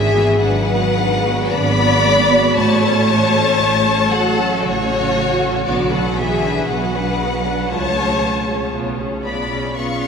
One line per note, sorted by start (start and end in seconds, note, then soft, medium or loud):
0.00 0.28 G#1 loud
0.00 0.37 E3 medium
0.00 0.14 G#3 medium
0.00 0.14 D4 medium
0.00 0.37 G#4 loud
0.00 0.37 E5 loud
0.14 0.40 B3 medium
0.14 0.40 F#4 medium
0.40 1.40 G#1 loud
0.40 1.51 F#3 medium
0.40 0.66 G#3 medium
0.40 0.66 D4 medium
0.40 1.53 B4 medium
0.40 1.54 F#5 loud
0.67 0.96 B3 medium
0.67 0.96 F#4 medium
0.96 1.25 G#3 medium
0.96 1.25 D4 medium
1.25 1.53 B3 medium
1.25 1.53 F#4 medium
1.52 2.46 G#1 loud
1.52 1.78 G#3 medium
1.52 2.58 B3 loud
1.52 1.78 D4 medium
1.52 2.57 D5 loud
1.52 2.58 B5 loud
1.80 2.06 B3 medium
1.80 2.06 F#4 medium
2.07 2.33 G#3 medium
2.07 2.32 D4 medium
2.32 2.58 B3 medium
2.32 2.57 F#4 medium
2.56 3.48 A1 loud
2.56 4.09 A3 loud
2.56 2.82 A3 loud
2.56 2.82 F#4 medium
2.56 4.08 C#5 loud
2.56 4.08 A5 loud
2.84 3.09 C#4 medium
2.84 3.09 A4 medium
3.09 3.35 A3 medium
3.09 3.35 F#4 medium
3.34 3.60 C#4 medium
3.34 3.60 A4 medium
3.59 4.51 A1 medium
3.59 3.84 A3 medium
3.59 3.84 F#4 medium
3.86 4.12 C#4 medium
3.86 4.12 A4 medium
4.11 4.64 F#3 medium
4.11 4.38 A3 medium
4.11 4.38 F#4 medium
4.11 4.63 A4 loud
4.11 4.63 F#5 loud
4.38 4.64 C#4 medium
4.38 4.64 A4 medium
4.63 5.54 A1 loud
4.63 5.66 C#3 medium
4.63 4.88 A3 medium
4.63 5.64 F#4 loud
4.63 4.88 F#4 medium
4.63 5.66 C#5 loud
4.90 5.16 C#4 medium
4.90 5.16 A4 medium
5.16 5.41 A3 medium
5.16 5.41 F#4 medium
5.41 5.66 C#4 medium
5.41 5.66 A4 medium
5.65 6.55 B1 loud
5.65 5.91 D3 medium
5.65 5.90 B3 medium
5.65 5.90 F#4 medium
5.65 5.91 D5 loud
5.91 6.16 F#3 medium
5.91 6.17 D4 medium
5.91 6.16 A4 medium
5.91 6.16 B4 medium
5.91 6.16 F#5 loud
6.15 6.68 E3 medium
6.15 6.42 B3 medium
6.15 6.42 F#4 medium
6.15 6.67 G#4 loud
6.15 6.68 E5 loud
6.43 6.68 D4 medium
6.43 6.68 B4 medium
6.65 7.57 B1 medium
6.65 7.70 F#3 medium
6.65 6.92 B3 medium
6.65 6.92 F#4 medium
6.65 7.69 B4 medium
6.65 7.70 F#5 loud
6.95 7.20 D4 medium
6.95 7.20 B4 medium
7.20 7.45 B3 medium
7.20 7.45 F#4 medium
7.46 7.71 D4 medium
7.46 7.71 B4 medium
7.69 8.59 C#2 medium
7.69 7.94 G#3 medium
7.69 8.72 A3 medium
7.69 7.94 F4 medium
7.69 8.69 C#5 loud
7.69 8.72 A5 loud
7.97 8.21 C#4 medium
7.97 8.21 G#4 medium
8.22 8.47 G#3 medium
8.22 8.47 F4 medium
8.48 8.73 C#4 medium
8.48 8.73 G#4 medium
8.71 9.63 B1 medium
8.71 8.97 B3 medium
8.71 8.96 F4 medium
8.99 9.24 C#4 medium
8.99 9.24 G#4 medium
9.24 9.73 B3 medium
9.24 9.51 B3 medium
9.24 9.51 F4 medium
9.24 9.73 D5 medium
9.24 9.73 B5 loud
9.51 9.77 C#4 medium
9.51 9.77 G#4 medium
9.77 10.08 B1 medium
9.77 10.03 B3 medium
9.77 10.08 C#4 medium
9.77 10.03 F4 medium
9.77 10.08 F5 medium
9.77 10.08 C#6 loud